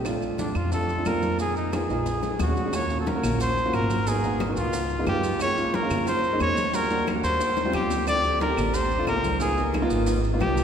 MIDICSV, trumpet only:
0, 0, Header, 1, 2, 480
1, 0, Start_track
1, 0, Tempo, 334262
1, 78, Time_signature, 4, 2, 24, 8
1, 15278, End_track
2, 0, Start_track
2, 0, Title_t, "Trumpet"
2, 0, Program_c, 0, 56
2, 566, Note_on_c, 0, 62, 73
2, 809, Note_on_c, 0, 65, 76
2, 830, Note_off_c, 0, 62, 0
2, 1044, Note_off_c, 0, 65, 0
2, 1056, Note_on_c, 0, 69, 89
2, 1534, Note_on_c, 0, 70, 92
2, 1555, Note_off_c, 0, 69, 0
2, 2008, Note_off_c, 0, 70, 0
2, 2019, Note_on_c, 0, 68, 93
2, 2234, Note_off_c, 0, 68, 0
2, 2251, Note_on_c, 0, 63, 79
2, 2491, Note_on_c, 0, 68, 78
2, 2513, Note_off_c, 0, 63, 0
2, 3448, Note_off_c, 0, 68, 0
2, 3473, Note_on_c, 0, 66, 78
2, 3943, Note_on_c, 0, 73, 88
2, 3965, Note_off_c, 0, 66, 0
2, 4306, Note_off_c, 0, 73, 0
2, 4314, Note_on_c, 0, 69, 60
2, 4426, Note_on_c, 0, 70, 77
2, 4448, Note_off_c, 0, 69, 0
2, 4895, Note_off_c, 0, 70, 0
2, 4904, Note_on_c, 0, 72, 97
2, 5372, Note_on_c, 0, 70, 90
2, 5394, Note_off_c, 0, 72, 0
2, 5861, Note_on_c, 0, 68, 91
2, 5883, Note_off_c, 0, 70, 0
2, 6332, Note_off_c, 0, 68, 0
2, 6578, Note_on_c, 0, 65, 86
2, 7240, Note_off_c, 0, 65, 0
2, 7299, Note_on_c, 0, 67, 90
2, 7737, Note_off_c, 0, 67, 0
2, 7778, Note_on_c, 0, 73, 105
2, 8254, Note_on_c, 0, 70, 96
2, 8275, Note_off_c, 0, 73, 0
2, 8723, Note_off_c, 0, 70, 0
2, 8732, Note_on_c, 0, 72, 97
2, 9173, Note_off_c, 0, 72, 0
2, 9210, Note_on_c, 0, 73, 108
2, 9692, Note_on_c, 0, 70, 105
2, 9713, Note_off_c, 0, 73, 0
2, 10166, Note_off_c, 0, 70, 0
2, 10393, Note_on_c, 0, 72, 98
2, 11065, Note_off_c, 0, 72, 0
2, 11123, Note_on_c, 0, 67, 90
2, 11567, Note_off_c, 0, 67, 0
2, 11598, Note_on_c, 0, 74, 110
2, 12045, Note_off_c, 0, 74, 0
2, 12078, Note_on_c, 0, 70, 93
2, 12554, Note_on_c, 0, 72, 94
2, 12576, Note_off_c, 0, 70, 0
2, 13024, Note_off_c, 0, 72, 0
2, 13033, Note_on_c, 0, 70, 99
2, 13481, Note_off_c, 0, 70, 0
2, 13509, Note_on_c, 0, 68, 91
2, 13958, Note_off_c, 0, 68, 0
2, 14943, Note_on_c, 0, 67, 88
2, 15278, Note_off_c, 0, 67, 0
2, 15278, End_track
0, 0, End_of_file